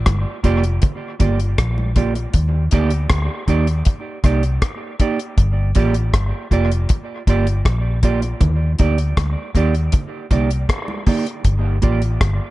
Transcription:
0.06 fingered electric bass G1, kick, cross-stick, closed hi-hat, high conga
0.43 fingered electric bass F1, clean electric guitar A#3 F4 G4 D5, kick, closed hi-hat
0.64 closed hi-hat
0.82 kick, closed hi-hat, low conga
1.19 fingered electric bass G1, clean electric guitar A#3 F4 G4 D5, kick, closed hi-hat, low conga
1.40 closed hi-hat
1.58 fingered electric bass A#1, kick, cross-stick, closed hi-hat
1.78 high conga
1.96 clean electric guitar A#3 F4 G4 D5, kick, closed hi-hat, low conga
2.15 muted clean electric guitar stroke, closed hi-hat
2.34 fingered electric bass D#2, kick, closed hi-hat
2.71 fingered electric bass D2, clean electric guitar A#3 D#4 G4 D5, kick, closed hi-hat
2.90 closed hi-hat
3.10 fingered electric bass D2, kick, cross-stick, closed hi-hat
3.48 fingered electric bass D#2, clean electric guitar A#3 D#4 G4 D5, kick, closed hi-hat
3.67 closed hi-hat
3.85 kick, closed hi-hat
4.24 fingered electric bass C2, clean electric guitar A#3 D#4 G4 D5, kick, cross-stick, closed hi-hat
4.43 closed hi-hat
4.62 kick, cross-stick, closed hi-hat
5.00 clean electric guitar A#3 D#4 G4 D5, kick, closed hi-hat
5.19 closed hi-hat
5.38 fingered electric bass G1, kick, closed hi-hat
5.75 fingered electric bass A1, clean electric guitar A#3 F4 G4 D5, kick, closed hi-hat
5.94 closed hi-hat
6.13 fingered electric bass G1, kick, cross-stick, closed hi-hat
6.51 fingered electric bass F1, clean electric guitar A#3 F4 G4 D5, kick, closed hi-hat
6.72 closed hi-hat
6.89 kick, closed hi-hat
7.27 fingered electric bass G1, clean electric guitar A#3 F4 G4 D5, kick, closed hi-hat
7.47 closed hi-hat
7.65 fingered electric bass A#1, kick, cross-stick, closed hi-hat
8.03 clean electric guitar A#3 F4 G4 D5, kick, closed hi-hat
8.22 muted clean electric guitar stroke, closed hi-hat
8.41 fingered electric bass D#2, kick, closed hi-hat, low conga
8.79 fingered electric bass D2, clean electric guitar A#3 D#4 G4 D5, kick, closed hi-hat
8.98 closed hi-hat
9.17 fingered electric bass D2, kick, cross-stick, closed hi-hat, high conga
9.55 fingered electric bass D#2, clean electric guitar A#3 D#4 G4 D5, kick, closed hi-hat
9.75 closed hi-hat
9.92 kick, closed hi-hat, low conga
10.31 fingered electric bass C2, clean electric guitar A#3 D#4 G4 D5, kick, closed hi-hat, low conga
10.51 closed hi-hat
10.69 kick, cross-stick, closed hi-hat
10.88 high conga
11.07 clean electric guitar A#3 D#4 G4 D5, kick, open hi-hat, low conga
11.27 closed hi-hat
11.45 fingered electric bass G1, kick, closed hi-hat
11.82 fingered electric bass A1, clean electric guitar A#3 F4 G4 D5, kick, closed hi-hat
12.02 closed hi-hat
12.21 fingered electric bass G1, kick, cross-stick, closed hi-hat

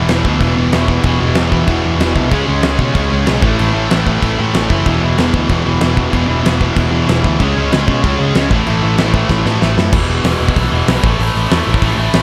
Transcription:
Already playing: distorted electric guitar E2 B2 E3
0.09 picked electric bass E1, distorted electric guitar E2 B2, snare, crash
0.13 distorted electric guitar E3
0.25 picked electric bass D2, distorted electric guitar E2 B2 E3, kick
0.41 picked electric bass E1, distorted electric guitar E2 B2 E3, kick, crash
0.57 picked electric bass E1, distorted electric guitar E2 B2 E3
0.72 picked electric bass E1, distorted electric guitar E2 B2 E3, snare, crash
0.88 distorted electric guitar E2 B2 E3, kick
1.03 picked electric bass E1, distorted electric guitar E2 B2 E3, kick, crash
1.20 picked electric bass E1, distorted electric guitar E2 B2 E3
1.35 picked electric bass E1, distorted electric guitar E2 B2 E3, snare, crash
1.51 distorted electric guitar E2 B2 E3, kick
1.67 picked electric bass E1, distorted electric guitar E2 B2 E3, kick, crash
1.83 distorted electric guitar E2 B2 E3, picked electric bass E2
1.99 picked electric bass E1, distorted electric guitar E2 B2 E3, snare, crash
2.15 picked electric bass C2, distorted electric guitar E2 B2 E3, kick
2.31 picked electric bass C#2, distorted electric guitar C#3 G#3 C#4, kick, crash
2.47 picked electric bass C#2, distorted electric guitar C#3 G#3 C#4
2.63 picked electric bass C#2, distorted electric guitar C#3 G#3 C#4, snare, crash
2.79 picked electric bass B2, distorted electric guitar C#3 G#3 C#4, kick
2.95 picked electric bass C#2, distorted electric guitar C#3 G#3 C#4, kick, crash
3.12 picked electric bass C#2, distorted electric guitar C#3 G#3 C#4
3.27 picked electric bass B1, distorted electric guitar C#3 G#3 C#4, snare, crash
3.42 picked electric bass A1, distorted electric guitar A2 E3 A3, kick
3.58 picked electric bass A1, distorted electric guitar A2 E3 A3, crash
3.74 picked electric bass A1, distorted electric guitar A2 E3 A3
3.90 picked electric bass A1, distorted electric guitar A2 E3 A3, snare, crash
4.07 distorted electric guitar A2 E3 A3, kick
4.22 picked electric bass A1, distorted electric guitar A2 E3 A3, kick, crash
4.39 picked electric bass A2, distorted electric guitar A2 E3 A3
4.54 picked electric bass A1, distorted electric guitar A2 E3 A3, snare, crash
4.70 picked electric bass F#1, distorted electric guitar A2 E3 A3, kick
4.86 picked electric bass E1, distorted electric guitar E2 B2 E3, kick, crash
5.03 picked electric bass E1, distorted electric guitar E2 B2 E3
5.18 picked electric bass E1, distorted electric guitar E2 B2 E3, snare, crash
5.34 picked electric bass D2, distorted electric guitar E2 B2 E3, kick
5.49 picked electric bass E1, distorted electric guitar E2 B2 E3, kick, crash
5.66 picked electric bass E1, distorted electric guitar E2 B2 E3
5.81 picked electric bass E1, distorted electric guitar E2 B2 E3, snare, crash
5.97 distorted electric guitar E2 B2 E3, kick
6.13 picked electric bass E1, distorted electric guitar E2 B2 E3, kick, crash
6.28 picked electric bass E1, distorted electric guitar E2 B2 E3
6.45 picked electric bass E1, distorted electric guitar E2 B2 E3, snare, crash
6.61 distorted electric guitar E2 B2 E3, kick
6.76 picked electric bass E1, distorted electric guitar E2 B2 E3, kick, crash
6.92 picked electric bass E2, distorted electric guitar E2 B2 E3
7.08 picked electric bass E1, distorted electric guitar E2 B2 E3, snare, crash
7.24 picked electric bass D2, distorted electric guitar E2 B2 E3, kick
7.40 picked electric bass C#2, distorted electric guitar C#3 G#3 C#4, kick, crash
7.57 picked electric bass C#2, distorted electric guitar C#3 G#3 C#4
7.72 picked electric bass C#2, distorted electric guitar C#3 G#3 C#4, snare, crash
7.87 picked electric bass B2, distorted electric guitar C#3 G#3 C#4, kick
8.04 picked electric bass C#2, distorted electric guitar C#3 G#3 C#4, kick, crash
8.19 picked electric bass C#2, distorted electric guitar C#3 G#3 C#4
8.35 picked electric bass C#2, distorted electric guitar C#3 G#3 C#4, snare, crash
8.51 picked electric bass A1, distorted electric guitar A2 E3 A3, kick
8.55 distorted electric guitar A3
8.67 picked electric bass A1, distorted electric guitar A2 E3 A3, crash
8.83 picked electric bass A1, distorted electric guitar A2 E3 A3
8.98 picked electric bass A1, distorted electric guitar A2 E3 A3, snare, crash
9.14 distorted electric guitar A2 E3 A3, kick
9.29 picked electric bass A1, distorted electric guitar A2 E3 A3, kick, snare
9.46 picked electric bass A2, distorted electric guitar A2 E3 A3, snare
9.62 picked electric bass A1, distorted electric guitar A2 E3 A3, snare
9.77 picked electric bass F#2, distorted electric guitar A2 E3 A3, snare
9.93 picked electric bass E1, distorted electric guitar E2 B2 E3, kick, crash
10.08 picked electric bass E1, distorted electric guitar E2 B2 E3
10.24 picked electric bass E1, distorted electric guitar E2 B2 E3, snare, open hi-hat
10.40 picked electric bass E1, distorted electric guitar E2 B2 E3
10.48 kick
10.56 picked electric bass B1, distorted electric guitar E2 B2 E3, kick, open hi-hat
10.72 picked electric bass E1, distorted electric guitar E2 B2 E3
10.88 picked electric bass B1, distorted electric guitar E2 B2 E3, snare, open hi-hat
11.04 picked electric bass A1, distorted electric guitar A2 E3 A3, kick
11.19 picked electric bass A1, distorted electric guitar A2 E3 A3, open hi-hat
11.35 picked electric bass A1, distorted electric guitar A2 E3 A3
11.51 picked electric bass E2, distorted electric guitar A2 E3 A3, snare, open hi-hat
11.66 picked electric bass A1, distorted electric guitar A2 E3 A3
11.74 kick
11.82 picked electric bass A1, distorted electric guitar A2 E3 A3, kick, open hi-hat
11.98 picked electric bass A1, distorted electric guitar A2 E3 A3
12.13 picked electric bass A1, distorted electric guitar A2 E3 A3, snare, open hi-hat

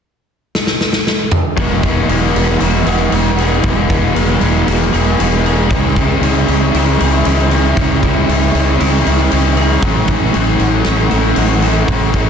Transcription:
0.55 snare
0.67 snare
0.81 snare
0.93 snare
1.07 snare
1.31 mid tom
1.57 fingered electric bass E1, overdriven electric guitar E2 B2 E3 G#3 B3 E4, clean electric guitar F#3, analog synth pad G#4 F#5 E6, kick, open hi-hat
1.83 overdriven electric guitar G#3 B3 E4, kick, open hi-hat
2.08 fingered electric bass E1, overdriven electric guitar E2 B2 E3 G#3 B3 E4, clean electric guitar F#3, open hi-hat
2.35 fingered electric bass E1, overdriven electric guitar G#3 B3 E4, open hi-hat
2.60 fingered electric bass E1, overdriven electric guitar E3 G#3 B3 E4, clean electric guitar F#4, open hi-hat
2.86 fingered electric bass E1, overdriven electric guitar E3 G#3 B3 E4, clean electric guitar G#4, open hi-hat
3.12 fingered electric bass E1, overdriven electric guitar E3 G#3 B3 E4, open hi-hat
3.38 overdriven electric guitar E3 G#3 B3 E4, clean electric guitar G#4, open hi-hat
3.63 fingered electric bass E1, overdriven electric guitar E2 B2 E3 G#3 B3, clean electric guitar F#3, analog synth pad G#5, kick, open hi-hat
3.67 overdriven electric guitar E4
3.90 overdriven electric guitar G#3 B3 E4, kick, open hi-hat
4.14 fingered electric bass E1, overdriven electric guitar E2 B2 E3 G#3 B3, clean electric guitar F#3, open hi-hat
4.18 overdriven electric guitar E4
4.41 fingered electric bass E1, overdriven electric guitar G#3 B3 E4, open hi-hat
4.67 fingered electric bass E1, overdriven electric guitar E3 G#3 B3 E4, clean electric guitar F#4, open hi-hat
4.93 fingered electric bass E1, overdriven electric guitar E3 G#3 B3 E4, clean electric guitar G#4, open hi-hat
5.19 fingered electric bass E1, overdriven electric guitar E3 G#3 B3 E4, open hi-hat
5.44 overdriven electric guitar E3 G#3 B3 E4, clean electric guitar G#4, open hi-hat
5.69 fingered electric bass C#2, overdriven electric guitar C#3 E3 G#3 C#4 E4, analog synth pad E5 C#6, kick, open hi-hat
5.95 overdriven electric guitar G#3 C#4 E4, kick, open hi-hat
6.20 fingered electric bass C#2, overdriven electric guitar C#3 E3 G#3 C#4 E4, open hi-hat
6.46 fingered electric bass C#2, overdriven electric guitar G#3 C#4 E4, open hi-hat
6.72 fingered electric bass C#2, overdriven electric guitar C#3 E3 G#3 C#4 E4, open hi-hat
6.98 fingered electric bass C#2, overdriven electric guitar C#3 G#3 C#4 E4, clean electric guitar G#4, open hi-hat
7.24 fingered electric bass C#2, overdriven electric guitar C#3 E3 G#3 C#4 E4, open hi-hat
7.50 overdriven electric guitar G#3 C#4 E4, clean electric guitar G#4, open hi-hat
7.77 fingered electric bass C#2, overdriven electric guitar C#3 E3 G#3 C#4 E4, kick, open hi-hat
8.03 overdriven electric guitar G#3 C#4 E4, kick, open hi-hat
8.28 fingered electric bass C#2, overdriven electric guitar C#3 E3 G#3 C#4 E4, open hi-hat
8.54 fingered electric bass C#2, overdriven electric guitar G#3 C#4 E4, open hi-hat
8.80 fingered electric bass C#2, overdriven electric guitar C#3 E3 G#3 C#4 E4, open hi-hat
9.06 fingered electric bass C#2, overdriven electric guitar C#3 G#3 C#4 E4, clean electric guitar G#4, open hi-hat
9.31 fingered electric bass C#2, overdriven electric guitar C#3 E3 G#3 C#4 E4, open hi-hat
9.57 overdriven electric guitar G#3 C#4 E4, clean electric guitar G#4, open hi-hat
9.81 fingered electric bass A1, overdriven electric guitar A2 E3 A3 C#4 E4, clean electric guitar F#3, analog synth pad A4 F#5 C#6, kick, open hi-hat
10.07 overdriven electric guitar A3 C#4 E4, kick, open hi-hat
10.34 fingered electric bass A1, overdriven electric guitar A2 E3 A3 C#4 E4, clean electric guitar F#3, open hi-hat
10.59 fingered electric bass A1, clean electric guitar F#3, overdriven electric guitar A3 C#4 E4, open hi-hat
10.84 fingered electric bass A1, overdriven electric guitar E3 A3 C#4 E4, snare, open hi-hat
11.11 fingered electric bass A1, overdriven electric guitar A2 E3 A3 C#4 E4, open hi-hat
11.36 fingered electric bass A1, overdriven electric guitar E3 A3 C#4 E4, clean electric guitar F#3, open hi-hat
11.62 overdriven electric guitar A3 C#4 E4, open hi-hat
11.88 fingered electric bass A1, overdriven electric guitar A2 E3 A3 C#4 E4, clean electric guitar F#3, analog synth pad G#5, kick, open hi-hat
12.14 overdriven electric guitar A3 C#4 E4, kick, open hi-hat

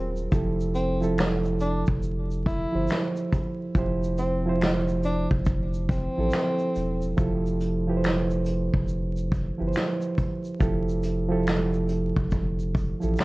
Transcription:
Already playing: sub bass D#1, reed electric piano F#3 F4 G#4 A#4 C5, tenor saxophone C4
0.16 shaker
0.31 sub bass F1, reed electric piano F3 E4 G4 A4, kick, shaker
0.61 shaker
0.75 tenor saxophone C4, closed hi-hat, shaker
1.01 reed electric piano F3 E4 G4 A4, shaker
1.18 finger snap, snare, shaker
1.45 shaker
1.60 tenor saxophone D4, closed hi-hat, shaker
1.86 sub bass F1, kick, shaker
2.03 shaker
2.31 shaker
2.46 tenor saxophone E4, kick, closed hi-hat, shaker
2.72 sub bass G1, reed electric piano F3 E4 G4 C5
2.88 finger snap, snare, shaker
3.16 shaker
3.32 kick, closed hi-hat, shaker
3.75 sub bass F1, reed electric piano F3 E4 G4 C5, kick, shaker
4.03 shaker
4.18 tenor saxophone C4, closed hi-hat, shaker
4.46 reed electric piano F3 E4 G4 C5
4.61 finger snap, snare, shaker
4.88 shaker
5.03 tenor saxophone D4, closed hi-hat, shaker
5.31 sub bass F1, kick
5.45 kick, shaker
5.74 shaker
5.89 tenor saxophone C4, kick, closed hi-hat, shaker
6.17 sub bass A1, reed electric piano F3 E4 G4 A4
6.30 finger snap, snare, shaker
6.59 shaker
6.75 sub bass E1, closed hi-hat, shaker
7.02 shaker
7.17 sub bass F1, reed electric piano F3 E4 G4 A4, kick, shaker
7.46 shaker
7.60 closed hi-hat, shaker
7.87 reed electric piano F3 E4 G4 B4
7.97 reed electric piano C5
8.04 finger snap, snare, shaker
8.30 shaker
8.46 closed hi-hat, shaker
8.74 sub bass F1, kick
8.88 shaker
9.17 shaker
9.32 kick, closed hi-hat, shaker
9.58 sub bass G1, reed electric piano F3 E4 G4 B4
9.68 reed electric piano C5
9.73 finger snap, snare, shaker
10.01 shaker
10.18 kick, closed hi-hat, shaker
10.44 shaker
10.60 sub bass F1, reed electric piano F3 E4 G4 A4, kick, shaker
10.89 shaker
11.03 closed hi-hat, shaker
11.29 reed electric piano F3 E4 G4 A4
11.47 finger snap, snare, shaker
11.73 shaker
11.89 closed hi-hat, shaker
12.16 sub bass F1, kick
12.31 kick, shaker
12.60 shaker
12.75 kick, closed hi-hat, shaker
13.00 sub bass A1, reed electric piano F3 E4 G4 A4, shaker
13.16 finger snap, snare, shaker

